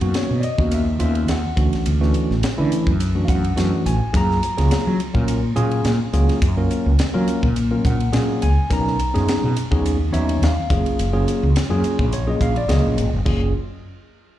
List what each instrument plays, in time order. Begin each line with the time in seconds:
0.01 fretless electric bass F#2, tine electric piano D#3 A#3 B3 C#4 F#4, ride
0.14 tine electric piano C#5, snare, hi-hat pedal, ride
0.31 fretless electric bass B2
0.40 tine electric piano D5 D#5, hi-hat pedal, ride
0.58 fretless electric bass D#2, tine electric piano D#3 A#3 B3 C#4 F#4, kick
0.71 tine electric piano E5, hi-hat pedal, ride
0.99 fretless electric bass D#2, tine electric piano D#3 A#3 B3 C#4 F4 E5, hi-hat pedal, ride
1.15 ride
1.28 fretless electric bass D#2, tine electric piano F#5, snare, hi-hat pedal, ride
1.56 fretless electric bass D2, tine electric piano E3 A3 C#4 D4 F#4, kick, hi-hat pedal, ride
1.73 muted fretless electric bass stroke, snare, ride
1.86 fretless electric bass D2, hi-hat pedal, ride
2.01 tine electric piano E3 A3 C#4 D4 F#4, snare
2.14 hi-hat pedal, ride
2.31 fretless electric bass A1, snare
2.43 snare, hi-hat pedal, ride
2.57 fretless electric bass D3, tine electric piano E3 A3 C#4 D4 E4
2.72 hi-hat pedal, ride
2.87 fretless electric bass F#2, kick
3.00 hi-hat pedal, ride
3.15 tine electric piano E3 A3 C#4 D4 F#4
3.25 fretless electric bass F#2, tine electric piano F5, kick, hi-hat pedal, ride
3.29 tine electric piano F#5
3.44 ride
3.56 fretless electric bass F#2, tine electric piano E3 A3 C#4 D4 F#4, snare, hi-hat pedal, ride
3.85 fretless electric bass A1, tine electric piano G#5, hi-hat pedal, ride
4.02 muted fretless electric bass stroke
4.13 fretless electric bass F#2, tine electric piano F#3 A#3 C#4 F4 G#4 A#5, kick, hi-hat pedal, ride
4.31 snare
4.43 hi-hat pedal, ride
4.57 fretless electric bass C#2, tine electric piano F#3 A#3 C#4 F4 G#4, snare, ride
4.71 snare, hi-hat pedal, ride
4.87 fretless electric bass F#3
5.00 hi-hat pedal, ride
5.14 fretless electric bass A#2, tine electric piano F#3 A#3 C#4 F4 A#4, kick
5.28 hi-hat pedal, ride
5.56 fretless electric bass A#2, tine electric piano F#3 A#3 C#4 F4 G#4, hi-hat pedal, ride
5.71 ride
5.85 fretless electric bass A#2, snare, hi-hat pedal, ride
6.13 fretless electric bass C#2, tine electric piano F#3 A#3 C#4 F4 G#4, hi-hat pedal, ride
6.29 muted fretless electric bass stroke, snare, ride
6.42 fretless electric bass F#2, kick, hi-hat pedal, ride
6.57 tine electric piano F#3 A#3 C#4 F4 A#4
6.71 hi-hat pedal, ride
6.86 fretless electric bass C#2
6.99 snare, hi-hat pedal, ride
7.14 tine electric piano F#3 A#3 C#4 F4 A#4, fretless electric bass F#3
7.28 hi-hat pedal, ride
7.43 fretless electric bass A#2, kick
7.56 hi-hat pedal, ride
7.71 tine electric piano F#3 A#3 C#4 F4 A#4
7.85 fretless electric bass A#2, tine electric piano F#5, kick, hi-hat pedal, ride
8.00 ride
8.13 fretless electric bass A#2, tine electric piano F#3 A#3 C#4 F4 G#4, snare, hi-hat pedal, ride
8.42 fretless electric bass C#2, tine electric piano G#5, hi-hat pedal, ride
8.58 muted fretless electric bass stroke
8.70 fretless electric bass B1, tine electric piano F#3 B3 C#4 D#4 A#4 A#5, kick, hi-hat pedal, ride
8.87 snare
8.99 hi-hat pedal, ride
9.14 fretless electric bass F#2, tine electric piano F#3 B3 C#4 D#4 G#4, snare, ride
9.28 snare, hi-hat pedal, ride
9.44 fretless electric bass B2
9.56 hi-hat pedal, ride
9.71 fretless electric bass D#2, tine electric piano F#3 B3 C#4 D#4 G#4, kick
9.86 hi-hat pedal, ride
10.13 fretless electric bass D#2, tine electric piano F#3 B3 C#4 D#4 C#5 E5, hi-hat pedal, ride
10.29 ride
10.42 fretless electric bass D#2, tine electric piano F5, snare, hi-hat pedal, ride
10.70 fretless electric bass F#1, tine electric piano F#3 A#3 C#4 F4 G#4, kick, hi-hat pedal, ride
10.86 muted fretless electric bass stroke, ride
10.99 fretless electric bass F#1, hi-hat pedal, ride
11.13 tine electric piano F#3 A#3 C#4 F4 G#4
11.28 hi-hat pedal, ride
11.43 fretless electric bass C#2
11.56 snare, hi-hat pedal, ride
11.70 fretless electric bass F#2, tine electric piano F#3 A#3 C#4 F4 G#4
11.84 hi-hat pedal, ride
11.99 fretless electric bass A#1, kick
12.12 tine electric piano C#5, hi-hat pedal, ride
12.27 tine electric piano F#3 A#3 C#4 F4 G#4 D#5
12.41 fretless electric bass A#1, tine electric piano F5, kick, hi-hat pedal, ride
12.56 tine electric piano D5, ride
12.68 fretless electric bass C#2, tine electric piano F#3 A#3 C#4 F4 G#4 D#5, snare, hi-hat pedal, ride
12.85 fretless electric bass A#1
12.98 fretless electric bass G#1, hi-hat pedal, ride
13.14 fretless electric bass F#1
13.25 fretless electric bass F#1, tine electric piano F#3 A#3 C#4 F4 G#4, kick, crash